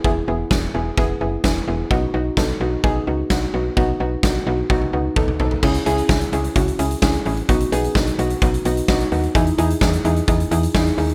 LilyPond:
<<
  \new Staff \with { instrumentName = "Synth pluck" } { \time 4/4 \key e \major \tempo 4 = 129 <b e' gis'>8 <b e' gis'>8 <b e' gis'>8 <b e' gis'>8 <b e' gis'>8 <b e' gis'>8 <b e' gis'>8 <b e' gis'>8 | <b dis' fis'>8 <b dis' fis'>8 <b dis' a'>8 <b dis' fis'>8 <b dis' gis'>8 <b dis' fis'>8 <b dis' fis'>8 <b dis' fis'>8 | <b dis' fis'>8 <b dis' fis'>8 <b dis' fis'>8 <b dis' fis'>8 <b dis' fis'>8 <b dis' fis'>8 <b dis' a'>8 <b dis' a'>8 | <cis' e' gis'>8 <cis' e' gis'>8 <cis' e' gis'>8 <cis' e' gis'>8 <cis' e' fis'>8 <cis' e' gis'>8 <cis' e' gis'>8 <cis' e' gis'>8 |
<b dis' fis'>8 <b dis' gis'>8 <b dis' fis'>8 <b dis' fis'>8 <b dis' fis'>8 <b dis' fis'>8 <b dis' fis'>8 <b dis' fis'>8 | <dis' e' gis'>8 <dis' e' gis'>8 <dis' e' gis'>8 <dis' e' gis'>8 <dis' e' gis'>8 <dis' e' gis'>8 <dis' e' gis'>8 <dis' e' gis'>8 | }
  \new Staff \with { instrumentName = "FM bass" } { \clef bass \time 4/4 \key e \major e,,8 e,,8 e,,8 e,,8 e,,8 fis,,8 e,,8 e,,8 | b,,8 b,,8 b,,8 b,,8 b,,8 cis,8 b,,8 b,,8 | b,,8 b,,8 b,,8 b,,8 b,,8 cis,8 b,,8 b,,8 | cis,8 cis,8 cis,8 cis,8 cis,8 cis,8 cis,8 a,,8 |
b,,8 b,,8 b,,8 b,,8 b,,8 b,,8 b,,8 dis,8 | e,8 e,8 e,8 e,8 e,8 e,8 e,8 dis,8 | }
  \new DrumStaff \with { instrumentName = "Drums" } \drummode { \time 4/4 bd4 <bd sn>4 bd4 <bd sn>4 | bd4 <bd sn>4 bd4 <bd sn>4 | bd4 <bd sn>4 <bd tommh>16 tommh8. <bd toml>16 toml16 tomfh16 tomfh16 | <cymc bd>16 hh16 hh16 hh16 <bd sn>16 hh16 hh16 hh16 <hh bd>16 hh16 hh16 hh16 <bd sn>16 hh16 hho16 hh16 |
<hh bd>16 hh16 hh16 hh16 <bd sn>16 hh16 hh16 hh16 <hh bd>16 hh16 hh16 hh16 <bd sn>16 hh16 hho16 hh16 | <hh bd>16 hh16 hh16 hh16 <bd sn>16 hh16 hh16 hh16 <hh bd>16 hh16 hh16 hh16 <bd sn>16 hh16 hho16 hh16 | }
>>